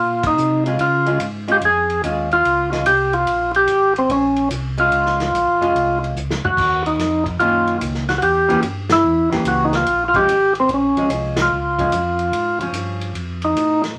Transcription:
0.00 0.36 A#2 medium
0.00 0.24 F4 medium
0.23 0.64 D#4 medium
0.23 kick medium
0.23 ride medium
0.37 0.78 C3 medium
0.37 hi-hat pedal medium
0.66 0.78 G#3 medium
0.66 0.79 C#4 soft
0.66 0.79 F4 medium
0.66 ride soft
0.78 1.19 C#3 medium
0.78 1.18 F4 medium
0.78 ride medium
1.06 1.19 G#3 medium
1.06 1.19 C#4 medium
1.06 1.20 F4 medium
1.06 ride soft
1.20 1.60 G#2 medium
1.20 hi-hat pedal soft
1.20 ride medium
1.48 1.60 G#3 medium
1.48 1.60 C#4 medium
1.48 1.61 F4 medium
1.48 ride soft
1.52 1.57 G4 medium
1.61 2.01 F2 medium
1.61 ride medium
1.65 2.02 G#4 medium
1.90 ride soft
2.03 2.43 D#2 medium
2.03 2.28 G#3 medium
2.03 2.29 C#4 medium
2.03 2.29 F4 medium
2.03 hi-hat pedal soft
2.03 ride medium
2.31 2.70 F4 medium
2.31 ride soft
2.45 2.84 C#2 medium
2.45 ride medium
2.72 2.84 G#3 medium
2.72 2.84 C#4 medium
2.72 2.85 F4 medium
2.72 snare soft
2.72 ride soft
2.85 3.25 C2 medium
2.85 3.14 G4 medium
2.85 hi-hat pedal soft
2.85 ride medium
3.13 3.52 F4 medium
3.13 ride soft
3.26 3.67 A#1 medium
3.26 ride medium
3.54 3.94 G4 medium
3.54 ride soft
3.67 4.08 G#1 medium
3.67 hi-hat pedal soft
3.67 ride medium
3.96 4.11 C4 medium
3.96 ride soft
4.09 4.49 A#1 medium
4.09 4.49 C#4 medium
4.09 ride medium
4.36 ride soft
4.51 4.91 C2 medium
4.51 hi-hat pedal medium
4.51 ride medium
4.78 5.30 G#3 medium
4.78 5.31 C#4 medium
4.78 5.31 F4 medium
4.78 5.99 F4 medium
4.78 ride soft
4.91 5.31 C#2 medium
4.91 ride medium
5.06 snare soft
5.20 snare soft
5.20 ride soft
5.32 5.46 A#1 medium
5.32 hi-hat pedal soft
5.32 ride medium
5.46 5.60 G#1 soft
5.60 5.73 F1 medium
5.60 6.13 G#3 medium
5.60 6.13 C#4 medium
5.60 6.14 F4 medium
5.60 ride soft
5.75 6.14 C2 medium
5.75 ride soft
6.04 ride soft
6.15 6.41 C#2 medium
6.15 hi-hat pedal medium
6.30 snare soft
6.42 6.49 C#2 soft
6.42 6.82 F#4 medium
6.42 floor tom medium
6.57 6.97 D#2 medium
6.57 kick medium
6.57 crash medium
6.86 7.24 D#4 medium
6.86 ride soft
6.97 7.38 F2 medium
6.97 snare soft
6.97 hi-hat pedal soft
6.97 ride medium
7.26 kick soft
7.26 ride soft
7.39 7.79 F#2 medium
7.39 8.03 D#3 medium
7.39 8.04 A#3 medium
7.39 8.04 C#4 medium
7.39 7.78 F4 medium
7.39 ride soft
7.67 ride soft
7.81 8.21 C#2 medium
7.81 hi-hat pedal medium
7.81 ride medium
7.95 snare soft
8.09 8.13 F#4 medium
8.09 snare soft
8.09 ride soft
8.18 8.47 E2 medium
8.18 8.22 F#4 medium
8.18 ride medium
8.23 8.61 G4 loud
8.49 8.57 E2 soft
8.49 8.61 E3 medium
8.49 8.61 A#3 medium
8.49 8.62 C#4 medium
8.49 8.62 G4 medium
8.49 ride soft
8.62 9.03 G2 medium
8.62 hi-hat pedal soft
8.62 ride medium
8.89 9.30 E4 medium
8.89 snare medium
8.89 ride medium
9.04 9.30 E2 medium
9.31 9.39 E2 soft
9.31 9.84 E3 medium
9.31 9.84 A#3 medium
9.31 9.84 C#4 medium
9.31 9.84 G4 medium
9.31 snare soft
9.31 ride soft
9.44 9.85 C#2 medium
9.44 9.65 F#4 medium
9.44 hi-hat pedal soft
9.44 ride medium
9.65 9.73 D#4 medium
9.73 10.04 F4 medium
9.73 snare soft
9.73 ride soft
9.86 10.26 A#1 medium
9.86 ride medium
10.08 10.16 F4 medium
10.14 10.26 F3 medium
10.14 10.27 G#3 medium
10.14 10.27 C#4 medium
10.14 10.53 G4 loud
10.14 kick medium
10.14 ride soft
10.28 10.68 G#1 medium
10.28 hi-hat pedal soft
10.28 ride medium
10.55 ride soft
10.60 10.70 C4 medium
10.69 10.94 A#1 medium
10.69 ride soft
10.74 11.10 C#4 medium
10.96 11.03 A#1 soft
10.96 11.49 F3 soft
10.96 11.49 G#3 medium
10.96 11.49 C#4 medium
10.96 ride soft
11.09 11.50 C2 medium
11.09 hi-hat pedal medium
11.09 ride medium
11.37 snare medium
11.37 ride medium
11.42 12.59 F4 medium
11.50 11.91 C#2 medium
11.78 11.91 F3 medium
11.78 11.91 G#3 medium
11.78 11.91 C#4 medium
11.78 kick soft
11.78 ride soft
11.92 12.32 F2 medium
11.92 hi-hat pedal soft
11.92 ride medium
12.19 ride soft
12.32 12.58 G#2 medium
12.32 ride medium
12.59 12.66 G#2 soft
12.59 13.13 F3 medium
12.59 13.13 C#4 medium
12.59 ride soft
12.72 13.13 G2 medium
12.72 hi-hat pedal medium
12.72 ride medium
13.01 ride soft
13.13 13.54 F2 medium
13.13 ride medium
13.42 13.82 D#4 medium
13.42 ride soft
13.55 13.95 A2 medium
13.55 hi-hat pedal medium
13.55 ride medium
13.84 snare soft
13.84 ride soft

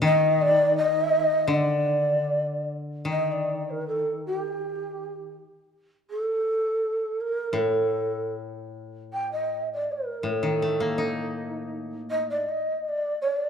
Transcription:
0.02 2.29 D#3 medium
0.02 0.42 D#5 loud
0.41 0.76 D5 loud
0.77 1.55 D#5 loud
1.48 3.86 D3 medium
1.53 2.71 D5 medium
3.05 5.35 D#3 soft
3.10 3.33 D#5 medium
3.31 3.71 D5 medium
3.70 3.87 A#4 medium
3.87 4.23 A4 medium
4.26 4.37 F#4 medium
4.37 5.33 G4 medium
6.10 7.21 A4 medium
7.20 7.59 A#4 medium
7.53 9.86 A2 medium
7.57 8.33 A4 medium
9.13 9.30 G5 medium
9.31 9.67 D#5 medium
9.73 9.93 D5 medium
9.91 10.32 A#4 medium
10.23 12.45 A2 soft
10.30 11.38 A4 medium
10.43 11.90 D#3 soft
10.62 12.09 A3 soft
10.80 12.27 A#3 soft
10.98 12.45 D#4 soft
12.10 12.27 D#5 medium
12.29 12.50 D5 medium
12.48 12.84 D#5 medium
12.84 12.89 D#5 medium
12.88 13.19 D5 medium
13.21 13.37 C#5 medium
13.37 13.49 D5 medium

